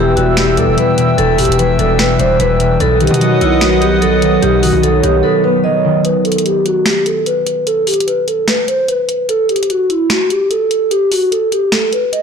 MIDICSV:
0, 0, Header, 1, 6, 480
1, 0, Start_track
1, 0, Tempo, 405405
1, 1398, Time_signature, 4, 2, 24, 8
1, 14472, End_track
2, 0, Start_track
2, 0, Title_t, "Analog synth pad"
2, 0, Program_c, 0, 89
2, 0, Note_on_c, 0, 71, 88
2, 0, Note_on_c, 0, 76, 84
2, 0, Note_on_c, 0, 79, 81
2, 0, Note_on_c, 0, 88, 97
2, 3272, Note_off_c, 0, 71, 0
2, 3280, Note_off_c, 0, 79, 0
2, 3281, Note_off_c, 0, 76, 0
2, 3281, Note_off_c, 0, 88, 0
2, 3319, Note_on_c, 0, 75, 83
2, 3319, Note_on_c, 0, 78, 80
2, 3319, Note_on_c, 0, 87, 95
2, 3320, Note_on_c, 0, 71, 89
2, 7120, Note_off_c, 0, 78, 0
2, 7121, Note_off_c, 0, 71, 0
2, 7121, Note_off_c, 0, 75, 0
2, 7121, Note_off_c, 0, 87, 0
2, 14472, End_track
3, 0, Start_track
3, 0, Title_t, "Vibraphone"
3, 0, Program_c, 1, 11
3, 0, Note_on_c, 1, 67, 86
3, 151, Note_off_c, 1, 67, 0
3, 195, Note_on_c, 1, 66, 82
3, 388, Note_off_c, 1, 66, 0
3, 443, Note_on_c, 1, 67, 84
3, 633, Note_off_c, 1, 67, 0
3, 680, Note_on_c, 1, 69, 74
3, 871, Note_off_c, 1, 69, 0
3, 919, Note_on_c, 1, 71, 85
3, 1370, Note_off_c, 1, 71, 0
3, 1396, Note_on_c, 1, 69, 103
3, 1589, Note_off_c, 1, 69, 0
3, 1637, Note_on_c, 1, 67, 84
3, 1829, Note_off_c, 1, 67, 0
3, 1873, Note_on_c, 1, 71, 91
3, 2068, Note_off_c, 1, 71, 0
3, 2122, Note_on_c, 1, 69, 78
3, 2312, Note_off_c, 1, 69, 0
3, 2366, Note_on_c, 1, 71, 89
3, 2555, Note_off_c, 1, 71, 0
3, 2597, Note_on_c, 1, 72, 87
3, 2789, Note_off_c, 1, 72, 0
3, 2843, Note_on_c, 1, 71, 93
3, 3292, Note_off_c, 1, 71, 0
3, 3323, Note_on_c, 1, 69, 109
3, 3514, Note_off_c, 1, 69, 0
3, 3562, Note_on_c, 1, 67, 72
3, 3753, Note_off_c, 1, 67, 0
3, 3799, Note_on_c, 1, 66, 80
3, 3991, Note_off_c, 1, 66, 0
3, 4041, Note_on_c, 1, 64, 81
3, 4232, Note_off_c, 1, 64, 0
3, 4274, Note_on_c, 1, 66, 79
3, 4468, Note_off_c, 1, 66, 0
3, 4517, Note_on_c, 1, 67, 79
3, 4709, Note_off_c, 1, 67, 0
3, 4754, Note_on_c, 1, 69, 86
3, 5208, Note_off_c, 1, 69, 0
3, 5239, Note_on_c, 1, 67, 111
3, 5431, Note_off_c, 1, 67, 0
3, 5474, Note_on_c, 1, 66, 93
3, 5667, Note_off_c, 1, 66, 0
3, 5716, Note_on_c, 1, 69, 92
3, 5909, Note_off_c, 1, 69, 0
3, 5961, Note_on_c, 1, 67, 82
3, 6152, Note_off_c, 1, 67, 0
3, 6193, Note_on_c, 1, 69, 88
3, 6387, Note_off_c, 1, 69, 0
3, 6441, Note_on_c, 1, 71, 74
3, 6632, Note_off_c, 1, 71, 0
3, 6676, Note_on_c, 1, 75, 81
3, 7128, Note_off_c, 1, 75, 0
3, 7160, Note_on_c, 1, 71, 98
3, 7351, Note_off_c, 1, 71, 0
3, 7400, Note_on_c, 1, 69, 90
3, 7591, Note_off_c, 1, 69, 0
3, 7639, Note_on_c, 1, 67, 84
3, 7831, Note_off_c, 1, 67, 0
3, 7873, Note_on_c, 1, 66, 80
3, 8067, Note_off_c, 1, 66, 0
3, 8121, Note_on_c, 1, 67, 81
3, 8312, Note_off_c, 1, 67, 0
3, 8359, Note_on_c, 1, 69, 72
3, 8551, Note_off_c, 1, 69, 0
3, 8600, Note_on_c, 1, 71, 85
3, 9050, Note_off_c, 1, 71, 0
3, 9076, Note_on_c, 1, 69, 98
3, 9269, Note_off_c, 1, 69, 0
3, 9316, Note_on_c, 1, 67, 78
3, 9509, Note_off_c, 1, 67, 0
3, 9551, Note_on_c, 1, 71, 88
3, 9746, Note_off_c, 1, 71, 0
3, 9800, Note_on_c, 1, 69, 75
3, 9991, Note_off_c, 1, 69, 0
3, 10044, Note_on_c, 1, 71, 88
3, 10234, Note_off_c, 1, 71, 0
3, 10275, Note_on_c, 1, 72, 86
3, 10468, Note_off_c, 1, 72, 0
3, 10521, Note_on_c, 1, 71, 89
3, 10971, Note_off_c, 1, 71, 0
3, 11001, Note_on_c, 1, 69, 106
3, 11192, Note_off_c, 1, 69, 0
3, 11241, Note_on_c, 1, 67, 73
3, 11432, Note_off_c, 1, 67, 0
3, 11479, Note_on_c, 1, 66, 77
3, 11671, Note_off_c, 1, 66, 0
3, 11720, Note_on_c, 1, 64, 77
3, 11912, Note_off_c, 1, 64, 0
3, 11954, Note_on_c, 1, 66, 75
3, 12148, Note_off_c, 1, 66, 0
3, 12196, Note_on_c, 1, 67, 75
3, 12389, Note_off_c, 1, 67, 0
3, 12434, Note_on_c, 1, 69, 83
3, 12888, Note_off_c, 1, 69, 0
3, 12920, Note_on_c, 1, 67, 106
3, 13111, Note_off_c, 1, 67, 0
3, 13153, Note_on_c, 1, 66, 89
3, 13347, Note_off_c, 1, 66, 0
3, 13394, Note_on_c, 1, 69, 85
3, 13588, Note_off_c, 1, 69, 0
3, 13641, Note_on_c, 1, 67, 78
3, 13832, Note_off_c, 1, 67, 0
3, 13874, Note_on_c, 1, 69, 84
3, 14068, Note_off_c, 1, 69, 0
3, 14122, Note_on_c, 1, 71, 71
3, 14313, Note_off_c, 1, 71, 0
3, 14356, Note_on_c, 1, 75, 77
3, 14472, Note_off_c, 1, 75, 0
3, 14472, End_track
4, 0, Start_track
4, 0, Title_t, "Harp"
4, 0, Program_c, 2, 46
4, 0, Note_on_c, 2, 40, 93
4, 0, Note_on_c, 2, 47, 85
4, 0, Note_on_c, 2, 52, 93
4, 194, Note_on_c, 2, 55, 88
4, 435, Note_on_c, 2, 59, 107
4, 665, Note_off_c, 2, 55, 0
4, 679, Note_on_c, 2, 55, 90
4, 906, Note_off_c, 2, 52, 0
4, 920, Note_on_c, 2, 52, 85
4, 1139, Note_off_c, 2, 47, 0
4, 1153, Note_on_c, 2, 47, 82
4, 1218, Note_off_c, 2, 52, 0
4, 1384, Note_off_c, 2, 40, 0
4, 1398, Note_on_c, 2, 40, 96
4, 1622, Note_off_c, 2, 47, 0
4, 1636, Note_on_c, 2, 47, 87
4, 1880, Note_on_c, 2, 52, 95
4, 2102, Note_off_c, 2, 55, 0
4, 2116, Note_on_c, 2, 55, 85
4, 2350, Note_off_c, 2, 59, 0
4, 2355, Note_on_c, 2, 59, 95
4, 2584, Note_off_c, 2, 55, 0
4, 2598, Note_on_c, 2, 55, 92
4, 2821, Note_off_c, 2, 52, 0
4, 2835, Note_on_c, 2, 52, 88
4, 3065, Note_off_c, 2, 47, 0
4, 3079, Note_on_c, 2, 47, 87
4, 3138, Note_off_c, 2, 52, 0
4, 3304, Note_off_c, 2, 47, 0
4, 3318, Note_on_c, 2, 47, 90
4, 3378, Note_off_c, 2, 40, 0
4, 3378, Note_off_c, 2, 55, 0
4, 3555, Note_on_c, 2, 51, 91
4, 3618, Note_off_c, 2, 47, 0
4, 3794, Note_on_c, 2, 54, 92
4, 4032, Note_off_c, 2, 59, 0
4, 4037, Note_on_c, 2, 59, 90
4, 4277, Note_on_c, 2, 71, 95
4, 4514, Note_off_c, 2, 59, 0
4, 4518, Note_on_c, 2, 59, 91
4, 4744, Note_off_c, 2, 54, 0
4, 4758, Note_on_c, 2, 54, 90
4, 4983, Note_off_c, 2, 51, 0
4, 4998, Note_on_c, 2, 51, 85
4, 5058, Note_off_c, 2, 54, 0
4, 5234, Note_on_c, 2, 47, 92
4, 5298, Note_off_c, 2, 51, 0
4, 5480, Note_on_c, 2, 51, 82
4, 5538, Note_off_c, 2, 47, 0
4, 5718, Note_on_c, 2, 54, 89
4, 5952, Note_off_c, 2, 59, 0
4, 5956, Note_on_c, 2, 59, 84
4, 6193, Note_off_c, 2, 71, 0
4, 6198, Note_on_c, 2, 71, 98
4, 6438, Note_off_c, 2, 59, 0
4, 6443, Note_on_c, 2, 59, 93
4, 6668, Note_off_c, 2, 54, 0
4, 6682, Note_on_c, 2, 54, 88
4, 6905, Note_off_c, 2, 51, 0
4, 6919, Note_on_c, 2, 51, 85
4, 6978, Note_off_c, 2, 54, 0
4, 7218, Note_off_c, 2, 51, 0
4, 8624, Note_off_c, 2, 71, 0
4, 10120, Note_off_c, 2, 59, 0
4, 14472, End_track
5, 0, Start_track
5, 0, Title_t, "808-style bass"
5, 0, Program_c, 3, 38
5, 0, Note_on_c, 3, 28, 106
5, 184, Note_off_c, 3, 28, 0
5, 198, Note_on_c, 3, 28, 109
5, 679, Note_on_c, 3, 40, 103
5, 697, Note_off_c, 3, 28, 0
5, 799, Note_on_c, 3, 28, 98
5, 816, Note_off_c, 3, 40, 0
5, 913, Note_off_c, 3, 28, 0
5, 1399, Note_on_c, 3, 28, 110
5, 1638, Note_on_c, 3, 31, 105
5, 1656, Note_off_c, 3, 28, 0
5, 1752, Note_off_c, 3, 31, 0
5, 1759, Note_on_c, 3, 28, 104
5, 2104, Note_off_c, 3, 28, 0
5, 2119, Note_on_c, 3, 28, 100
5, 2580, Note_off_c, 3, 28, 0
5, 2599, Note_on_c, 3, 28, 105
5, 2829, Note_off_c, 3, 28, 0
5, 2839, Note_on_c, 3, 28, 112
5, 3300, Note_off_c, 3, 28, 0
5, 3319, Note_on_c, 3, 35, 115
5, 3664, Note_off_c, 3, 35, 0
5, 3678, Note_on_c, 3, 47, 102
5, 4024, Note_off_c, 3, 47, 0
5, 4039, Note_on_c, 3, 35, 100
5, 5191, Note_off_c, 3, 35, 0
5, 5238, Note_on_c, 3, 35, 115
5, 5584, Note_off_c, 3, 35, 0
5, 5599, Note_on_c, 3, 35, 104
5, 5944, Note_off_c, 3, 35, 0
5, 5959, Note_on_c, 3, 35, 104
5, 6189, Note_off_c, 3, 35, 0
5, 14472, End_track
6, 0, Start_track
6, 0, Title_t, "Drums"
6, 201, Note_on_c, 9, 42, 66
6, 319, Note_off_c, 9, 42, 0
6, 437, Note_on_c, 9, 26, 92
6, 438, Note_on_c, 9, 38, 111
6, 439, Note_on_c, 9, 42, 77
6, 556, Note_off_c, 9, 26, 0
6, 557, Note_off_c, 9, 38, 0
6, 557, Note_off_c, 9, 42, 0
6, 679, Note_on_c, 9, 42, 74
6, 798, Note_off_c, 9, 42, 0
6, 920, Note_on_c, 9, 42, 81
6, 1038, Note_off_c, 9, 42, 0
6, 1158, Note_on_c, 9, 42, 86
6, 1277, Note_off_c, 9, 42, 0
6, 1400, Note_on_c, 9, 42, 83
6, 1518, Note_off_c, 9, 42, 0
6, 1639, Note_on_c, 9, 42, 59
6, 1641, Note_on_c, 9, 46, 107
6, 1719, Note_off_c, 9, 42, 0
6, 1719, Note_on_c, 9, 42, 80
6, 1759, Note_off_c, 9, 46, 0
6, 1799, Note_off_c, 9, 42, 0
6, 1799, Note_on_c, 9, 42, 100
6, 1884, Note_off_c, 9, 42, 0
6, 1884, Note_on_c, 9, 42, 81
6, 2003, Note_off_c, 9, 42, 0
6, 2120, Note_on_c, 9, 42, 69
6, 2239, Note_off_c, 9, 42, 0
6, 2357, Note_on_c, 9, 26, 93
6, 2358, Note_on_c, 9, 38, 114
6, 2358, Note_on_c, 9, 42, 80
6, 2475, Note_off_c, 9, 26, 0
6, 2476, Note_off_c, 9, 38, 0
6, 2477, Note_off_c, 9, 42, 0
6, 2598, Note_on_c, 9, 42, 75
6, 2717, Note_off_c, 9, 42, 0
6, 2839, Note_on_c, 9, 42, 85
6, 2957, Note_off_c, 9, 42, 0
6, 3078, Note_on_c, 9, 42, 85
6, 3196, Note_off_c, 9, 42, 0
6, 3319, Note_on_c, 9, 42, 79
6, 3437, Note_off_c, 9, 42, 0
6, 3558, Note_on_c, 9, 42, 57
6, 3639, Note_off_c, 9, 42, 0
6, 3639, Note_on_c, 9, 42, 79
6, 3718, Note_off_c, 9, 42, 0
6, 3718, Note_on_c, 9, 42, 100
6, 3804, Note_off_c, 9, 42, 0
6, 3804, Note_on_c, 9, 42, 84
6, 3923, Note_off_c, 9, 42, 0
6, 4041, Note_on_c, 9, 42, 68
6, 4159, Note_off_c, 9, 42, 0
6, 4277, Note_on_c, 9, 26, 91
6, 4278, Note_on_c, 9, 38, 117
6, 4278, Note_on_c, 9, 42, 78
6, 4395, Note_off_c, 9, 26, 0
6, 4396, Note_off_c, 9, 38, 0
6, 4397, Note_off_c, 9, 42, 0
6, 4519, Note_on_c, 9, 42, 73
6, 4637, Note_off_c, 9, 42, 0
6, 4760, Note_on_c, 9, 42, 83
6, 4878, Note_off_c, 9, 42, 0
6, 4999, Note_on_c, 9, 42, 86
6, 5118, Note_off_c, 9, 42, 0
6, 5240, Note_on_c, 9, 42, 85
6, 5358, Note_off_c, 9, 42, 0
6, 5481, Note_on_c, 9, 46, 103
6, 5600, Note_off_c, 9, 46, 0
6, 5724, Note_on_c, 9, 42, 84
6, 5843, Note_off_c, 9, 42, 0
6, 5961, Note_on_c, 9, 42, 69
6, 6080, Note_off_c, 9, 42, 0
6, 7159, Note_on_c, 9, 42, 82
6, 7278, Note_off_c, 9, 42, 0
6, 7399, Note_on_c, 9, 42, 54
6, 7479, Note_off_c, 9, 42, 0
6, 7479, Note_on_c, 9, 42, 74
6, 7559, Note_off_c, 9, 42, 0
6, 7559, Note_on_c, 9, 42, 95
6, 7645, Note_off_c, 9, 42, 0
6, 7645, Note_on_c, 9, 42, 78
6, 7763, Note_off_c, 9, 42, 0
6, 7881, Note_on_c, 9, 42, 66
6, 8000, Note_off_c, 9, 42, 0
6, 8118, Note_on_c, 9, 26, 89
6, 8119, Note_on_c, 9, 38, 112
6, 8119, Note_on_c, 9, 42, 76
6, 8236, Note_off_c, 9, 26, 0
6, 8237, Note_off_c, 9, 38, 0
6, 8238, Note_off_c, 9, 42, 0
6, 8359, Note_on_c, 9, 42, 73
6, 8478, Note_off_c, 9, 42, 0
6, 8600, Note_on_c, 9, 42, 81
6, 8718, Note_off_c, 9, 42, 0
6, 8838, Note_on_c, 9, 42, 79
6, 8957, Note_off_c, 9, 42, 0
6, 9079, Note_on_c, 9, 42, 82
6, 9197, Note_off_c, 9, 42, 0
6, 9318, Note_on_c, 9, 42, 54
6, 9320, Note_on_c, 9, 46, 95
6, 9398, Note_off_c, 9, 42, 0
6, 9398, Note_on_c, 9, 42, 76
6, 9439, Note_off_c, 9, 46, 0
6, 9477, Note_off_c, 9, 42, 0
6, 9477, Note_on_c, 9, 42, 96
6, 9563, Note_off_c, 9, 42, 0
6, 9563, Note_on_c, 9, 42, 81
6, 9682, Note_off_c, 9, 42, 0
6, 9800, Note_on_c, 9, 42, 69
6, 9919, Note_off_c, 9, 42, 0
6, 10036, Note_on_c, 9, 26, 90
6, 10037, Note_on_c, 9, 38, 107
6, 10038, Note_on_c, 9, 42, 73
6, 10155, Note_off_c, 9, 26, 0
6, 10155, Note_off_c, 9, 38, 0
6, 10156, Note_off_c, 9, 42, 0
6, 10278, Note_on_c, 9, 42, 72
6, 10397, Note_off_c, 9, 42, 0
6, 10519, Note_on_c, 9, 42, 82
6, 10638, Note_off_c, 9, 42, 0
6, 10758, Note_on_c, 9, 42, 84
6, 10877, Note_off_c, 9, 42, 0
6, 10999, Note_on_c, 9, 42, 82
6, 11117, Note_off_c, 9, 42, 0
6, 11238, Note_on_c, 9, 42, 55
6, 11318, Note_off_c, 9, 42, 0
6, 11318, Note_on_c, 9, 42, 77
6, 11398, Note_off_c, 9, 42, 0
6, 11398, Note_on_c, 9, 42, 94
6, 11484, Note_off_c, 9, 42, 0
6, 11484, Note_on_c, 9, 42, 80
6, 11602, Note_off_c, 9, 42, 0
6, 11720, Note_on_c, 9, 42, 68
6, 11839, Note_off_c, 9, 42, 0
6, 11957, Note_on_c, 9, 26, 90
6, 11958, Note_on_c, 9, 38, 112
6, 11959, Note_on_c, 9, 42, 76
6, 12075, Note_off_c, 9, 26, 0
6, 12076, Note_off_c, 9, 38, 0
6, 12077, Note_off_c, 9, 42, 0
6, 12199, Note_on_c, 9, 42, 72
6, 12318, Note_off_c, 9, 42, 0
6, 12440, Note_on_c, 9, 42, 77
6, 12558, Note_off_c, 9, 42, 0
6, 12679, Note_on_c, 9, 42, 83
6, 12797, Note_off_c, 9, 42, 0
6, 12919, Note_on_c, 9, 42, 81
6, 13038, Note_off_c, 9, 42, 0
6, 13161, Note_on_c, 9, 46, 97
6, 13279, Note_off_c, 9, 46, 0
6, 13404, Note_on_c, 9, 42, 81
6, 13523, Note_off_c, 9, 42, 0
6, 13641, Note_on_c, 9, 42, 65
6, 13760, Note_off_c, 9, 42, 0
6, 13878, Note_on_c, 9, 26, 89
6, 13878, Note_on_c, 9, 38, 110
6, 13879, Note_on_c, 9, 42, 77
6, 13996, Note_off_c, 9, 26, 0
6, 13997, Note_off_c, 9, 38, 0
6, 13997, Note_off_c, 9, 42, 0
6, 14120, Note_on_c, 9, 42, 74
6, 14238, Note_off_c, 9, 42, 0
6, 14360, Note_on_c, 9, 42, 80
6, 14472, Note_off_c, 9, 42, 0
6, 14472, End_track
0, 0, End_of_file